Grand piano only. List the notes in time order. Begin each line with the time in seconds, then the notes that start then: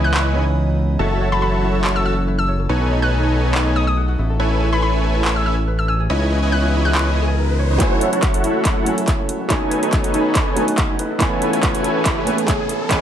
Already playing: E3 B3 C#4 G#4 D#5
0.33 E3 B3 C#4 D#4 G#4
7.78 F#3 A3 C#4 E4
7.82 G#5
8.85 F#3 A3 C#4 E4
8.89 G#5
9.48 F#3 A3 C#4 D#4 G#5
10.56 F#3 A3 C#4 D#4 G#5
11.18 E3 A3 B3 C#4
11.22 G#5
12.25 E3 A3 B3 C#4
12.29 G#5
12.89 E3 B3 C#4 G#4 D#5